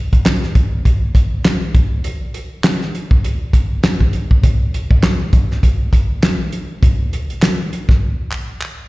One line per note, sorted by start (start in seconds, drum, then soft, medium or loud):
0.13 kick medium
0.13 closed hi-hat soft
0.25 snare loud
0.25 clap medium
0.25 closed hi-hat medium
0.43 snare soft
0.55 kick medium
0.55 closed hi-hat medium
0.85 kick medium
0.85 closed hi-hat medium
1.15 kick medium
1.15 closed hi-hat medium
1.44 snare loud
1.44 clap medium
1.44 closed hi-hat medium
1.74 kick loud
1.74 closed hi-hat medium
2.04 closed hi-hat medium
2.34 closed hi-hat medium
2.64 snare loud
2.64 clap medium
2.64 closed hi-hat medium
2.82 snare soft
2.95 closed hi-hat medium
3.11 kick loud
3.24 closed hi-hat medium
3.53 kick medium
3.53 closed hi-hat medium
3.83 snare loud
3.83 clap medium
3.83 closed hi-hat medium
4.00 kick medium
4.13 closed hi-hat medium
4.31 kick medium
4.43 kick loud
4.43 closed hi-hat medium
4.74 closed hi-hat medium
4.91 kick medium
5.03 snare loud
5.03 clap medium
5.03 closed hi-hat medium
5.33 kick loud
5.33 closed hi-hat medium
5.51 snare soft
5.63 kick medium
5.63 closed hi-hat medium
5.93 kick medium
5.93 closed hi-hat medium
6.22 snare loud
6.22 clap medium
6.22 closed hi-hat medium
6.52 closed hi-hat medium
6.83 kick loud
6.83 closed hi-hat medium
7.13 closed hi-hat medium
7.30 closed hi-hat soft
7.42 snare loud
7.42 clap medium
7.42 closed hi-hat medium
7.73 closed hi-hat medium
7.89 kick medium
7.89 snare soft
8.31 clap medium
8.61 clap medium